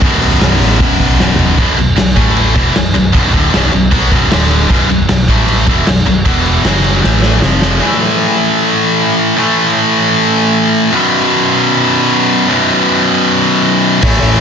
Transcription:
0.01 B0 B1 F#2 B2, kick, open hi-hat
0.22 B0, open hi-hat
0.41 B0, snare, open hi-hat
0.61 A1, snare, open hi-hat
0.72 snare
0.80 E1, kick, open hi-hat
1.00 B1, kick, open hi-hat
1.19 B0, snare
1.39 F#1, floor tom
1.58 B0 B1 F#2 B2, kick, crash
1.77 B0 B1 F#2, crash
1.96 B0 B1 F#2, snare, crash
2.16 A1 A2 E3 A3, kick, crash
2.37 crash
2.55 E1 E2 B2 E3, kick, crash
2.74 B0 B1 F#2, snare, crash
2.94 B0 B1 F#2, crash
3.12 B0 B1 F#2 B2, kick, crash
3.33 D1 D2 A2 D3, kick, crash
3.52 B0 B1 F#2 B2, snare, crash
3.72 B0 B1 F#2, crash
3.91 B1 B2 F#3 B3, kick, crash
4.11 B0 B1 F#2 B2, kick, crash
4.30 D1 D2 A2 D3, snare, crash
4.51 crash
4.69 B0 B1 F#2 B2, kick, crash
4.89 B0 B1 F#2, crash
5.09 B0 B1 F#2, snare, crash
5.28 A1 A2 E3 A3, kick, crash
5.48 crash
5.67 E1 E2 B2 E3, kick, crash
5.87 B0 B1 F#2, snare, crash
6.06 B0 B1 F#2, crash
6.25 E1 E2 B2 E3, kick, crash
6.46 crash
6.64 F#1 F#2 C#3 F#3, snare, crash
6.84 crash
7.03 A1 A2 E3 A3, snare
7.22 snare
7.42 F1 F2 C3 F3, snare
7.62 snare
7.81 A2 E3 A3
9.36 A2 E3 A3
10.92 B1 F#2 B2
12.47 B1 F#2 B2
14.02 A1 A2 E3 A3, kick, crash
14.22 A1, open hi-hat

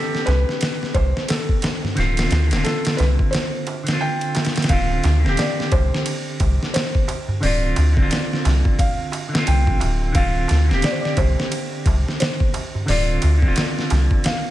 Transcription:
Already playing: D3 C4 G4 A4
0.13 snare, darbuka tek
0.26 C2 B4, snare, ride, darbuka tek
0.47 snare, darbuka tek
0.61 snare, ride, darbuka tek
0.82 snare, darbuka tek
0.94 C2 C5, kick, ride, darbuka tek
1.16 snare, darbuka tek
1.28 A4, snare, ride, darbuka tek
1.49 kick, darbuka tek
1.62 snare, ride, darbuka tek
1.83 snare, darbuka tek, darbuka dum
1.95 D1 D3 C4, snare, ride, darbuka tek
2.00 F4
2.17 snare, ride, darbuka tek
2.31 D2, snare, ride, darbuka tek
2.47 D3, ride, darbuka tek
2.52 D1 C4, snare
2.57 F4
2.64 A4, snare, ride, darbuka tek
2.85 snare, ride
2.97 C2 B4, snare, ride, darbuka tek
3.19 kick, darbuka tek
3.31 C5, snare, ride, darbuka tek
3.53 darbuka tek
3.67 ride, darbuka tek
3.83 D3, ride
3.88 C4, snare, darbuka tek
3.93 F4
4.01 G5, darbuka tek
4.21 ride, darbuka tek
4.35 snare, ride, darbuka tek
4.45 snare, ride
4.56 snare, ride, darbuka tek
4.62 snare, ride
4.68 D1 D3 C4 F5, kick, ride, darbuka tek
4.73 F4
4.91 darbuka tek
5.04 D2, snare, ride, darbuka tek
5.20 D3
5.24 D1 C4, snare, darbuka tek
5.29 G4
5.37 D5, snare, ride, darbuka tek
5.58 snare, darbuka tek
5.72 C2 C5, kick, ride, darbuka tek
5.93 snare, darbuka tek
6.06 ride, darbuka tek
6.27 darbuka tek
6.40 C2, kick, ride, darbuka tek
6.60 snare, darbuka tek
6.74 C5, snare, ride, darbuka tek
6.95 kick, darbuka tek
7.08 ride, darbuka tek
7.28 darbuka tek, darbuka dum
7.40 D1 D3 C4 D5, open hi-hat, darbuka tek
7.45 F4
7.63 darbuka tek
7.76 D2, ride, darbuka tek
7.93 D3
7.97 D1 C4, kick, darbuka tek
8.02 F4
8.10 snare, ride, darbuka tek
8.30 snare, darbuka tek
8.45 C2, snare, ride, darbuka tek
8.64 kick, darbuka tek
8.79 F5, kick, ride, darbuka tek
8.99 darbuka tek
9.12 ride, darbuka tek
9.29 D3
9.33 C4, snare, darbuka tek
9.38 F4
9.47 C2 G5, ride, darbuka tek
9.67 A1, kick, darbuka tek
9.80 D1, ride, darbuka tek
10.01 darbuka tek
10.12 D1 D3 C4 F5, kick, ride, darbuka tek
10.18 F4
10.35 darbuka tek
10.48 D2, snare, ride, darbuka tek
10.65 D3
10.69 D1 C4, snare, darbuka tek
10.74 G4
10.82 D5, snare, ride, darbuka tek
10.91 C5
11.01 D5, darbuka tek
11.05 snare
11.17 C2 C5, kick, ride, darbuka tek
11.37 snare, darbuka tek
11.51 ride, darbuka tek
11.72 darbuka tek
11.86 C2, kick, ride, darbuka tek
12.07 snare, darbuka tek
12.20 C5, snare, ride, darbuka tek
12.40 kick, darbuka tek
12.54 ride, darbuka tek
12.75 darbuka tek, darbuka dum
12.86 D1 D3 C4 D5, open hi-hat, darbuka tek
12.90 F4
13.09 darbuka tek
13.22 D2, ride, darbuka tek
13.38 D3, kick
13.43 D1 C4, darbuka tek
13.48 F4
13.56 snare, ride, darbuka tek
13.77 snare, darbuka tek
13.90 C2, snare, ride, darbuka tek
14.11 kick, darbuka tek
14.24 F5, snare, ride, darbuka tek
14.45 darbuka tek

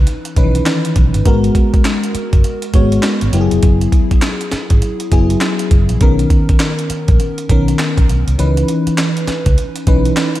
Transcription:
Already playing: E3 C#4 D#4 B4
0.07 closed hi-hat
0.25 closed hi-hat
0.36 B1 D#3 C#4 D#4 B4, kick, closed hi-hat
0.43 E3
0.55 closed hi-hat
0.66 snare, clap, closed hi-hat
0.85 closed hi-hat
0.96 B1, kick, closed hi-hat
1.14 G1, closed hi-hat
1.26 G#1 G#3 B3 F#4 A#4, kick, closed hi-hat
1.44 closed hi-hat
1.55 kick, closed hi-hat
1.74 muted fingered electric bass stroke, kick, closed hi-hat
1.85 snare, clap, closed hi-hat
2.04 closed hi-hat
2.15 muted fingered electric bass stroke, closed hi-hat
2.33 F#1, kick, closed hi-hat
2.44 closed hi-hat
2.62 closed hi-hat
2.74 G#1 G#3 B3 F#4 C#5, kick, closed hi-hat
2.92 closed hi-hat
3.03 snare, clap, closed hi-hat
3.21 G#1, closed hi-hat
3.33 F#1 F#3 B3 E4 G4, closed hi-hat
3.41 G#4
3.51 F1, closed hi-hat
3.63 F#1, kick, closed hi-hat
3.81 closed hi-hat
3.92 kick, closed hi-hat
4.11 muted fingered electric bass stroke, kick, closed hi-hat
4.22 snare, clap, closed hi-hat
4.41 closed hi-hat
4.52 muted fingered electric bass stroke, snare, closed hi-hat
4.70 G#1, kick, closed hi-hat
4.82 closed hi-hat
5.00 closed hi-hat
5.11 F#1 F#3 B3 E4 G#4, kick, closed hi-hat
5.30 closed hi-hat
5.41 snare, clap, closed hi-hat
5.59 closed hi-hat
5.71 F#1, kick, closed hi-hat
5.89 A#1, closed hi-hat
6.01 B1 D#3 B3 C#4 A#4, kick, closed hi-hat
6.19 closed hi-hat
6.30 kick, closed hi-hat
6.49 muted fingered electric bass stroke, kick, closed hi-hat
6.60 snare, clap, closed hi-hat
6.79 closed hi-hat
6.90 muted fingered electric bass stroke, closed hi-hat
7.08 A#1, kick, closed hi-hat
7.20 closed hi-hat
7.38 closed hi-hat
7.49 B1 D#3 B3 C#4 A#4, kick, closed hi-hat
7.68 closed hi-hat
7.79 snare, clap, closed hi-hat
7.98 B1, kick, closed hi-hat
8.09 B1, closed hi-hat
8.27 C2, closed hi-hat
8.38 C#2 E3 C#4 D#4 B4, closed hi-hat
8.57 closed hi-hat
8.68 closed hi-hat
8.87 muted fingered electric bass stroke, closed hi-hat
8.98 snare, clap, closed hi-hat
9.17 closed hi-hat
9.28 muted fingered electric bass stroke, snare, closed hi-hat
9.46 C#2, kick, closed hi-hat
9.58 closed hi-hat
9.76 closed hi-hat
9.87 B1 E3 C#4 D#4 B4, kick, closed hi-hat
10.05 closed hi-hat
10.17 snare, clap, closed hi-hat
10.35 closed hi-hat

